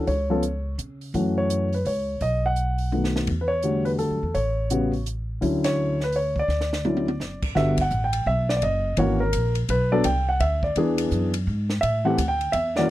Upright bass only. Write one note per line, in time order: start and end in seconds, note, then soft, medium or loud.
0.07 0.74 C#2 medium
0.78 1.11 C#3 medium
1.14 1.81 F#2 medium
1.85 2.18 C#2 medium
2.21 3.24 B1 medium
3.28 4.07 E2 medium
4.10 4.22 F#2 soft
4.23 4.34 E2 medium
4.35 5.38 A1 medium
5.42 6.45 D2 medium
6.48 7.15 D2 medium
7.20 7.53 F#1 medium
7.56 7.90 G1 medium
7.91 8.25 A1 medium
8.26 8.61 B1 medium
8.62 8.97 F#1 medium
8.97 9.32 G#1 medium
9.33 9.68 A#1 medium
9.69 10.03 B1 medium
10.05 10.39 C2 medium
10.40 10.75 D2 medium
10.76 11.10 E2 medium
11.11 11.46 F#2 medium
11.47 11.81 G#2 medium
11.83 12.17 A2 medium
12.18 12.52 D2 medium
12.54 12.88 E2 medium